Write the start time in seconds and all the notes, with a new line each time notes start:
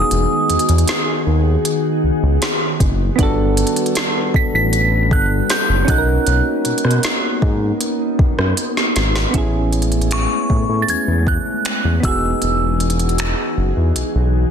Already playing: D#3 B3 D#4 F#4 G#4 D#6
0.11 E1, closed hi-hat
0.50 E2, closed hi-hat
0.59 closed hi-hat
0.69 E2, closed hi-hat
0.78 closed hi-hat
0.88 snare, closed hi-hat
1.27 D#2
1.65 closed hi-hat
2.03 C#2
2.23 C#2
2.42 snare, closed hi-hat
2.80 F#1, kick, closed hi-hat
3.16 G1 G3 B3 D4 A4 B4, kick, closed hi-hat
3.20 F#4 A4
3.57 closed hi-hat
3.67 closed hi-hat
3.76 closed hi-hat
3.86 closed hi-hat
3.95 snare, closed hi-hat
4.34 A1 B6, kick
4.53 A1 B6
4.73 closed hi-hat
5.11 G1 F#6, kick
5.50 G6, snare, closed hi-hat
5.69 F#1
5.85 B1 A#3 B3 C#4 D#4, kick, closed hi-hat
5.89 F#4 A4 F#6
5.98 A#4
6.27 B1, closed hi-hat
6.65 B2, closed hi-hat
6.78 closed hi-hat
6.84 B2, cross-stick
6.91 closed hi-hat
7.03 snare, closed hi-hat
7.42 G#2, kick
7.81 closed hi-hat
8.19 F#2, kick
8.38 F#2, cross-stick
8.57 closed hi-hat
8.77 snare
8.96 G#1, snare, closed hi-hat
9.16 snare
9.31 A1 G#3 A3 B3 C#4, kick, closed hi-hat
9.35 E4 G#4
9.72 closed hi-hat
9.82 closed hi-hat
9.92 closed hi-hat
10.01 closed hi-hat
10.11 C#6, finger snap, closed hi-hat
10.50 A2, kick
10.69 A2
10.82 A6
10.88 E2 G#6, closed hi-hat
11.07 E2
11.27 F#6, kick
11.65 finger snap, closed hi-hat
11.84 E2
12.00 E1 E3 B3 D#4 F#4 G#4, kick, closed hi-hat
12.05 F#4 G#4 E6
12.42 E1, closed hi-hat
12.80 closed hi-hat
12.90 closed hi-hat
12.99 closed hi-hat
13.09 closed hi-hat
13.18 finger snap, closed hi-hat
13.57 F#1
13.77 E2
13.96 B1, closed hi-hat
14.15 B1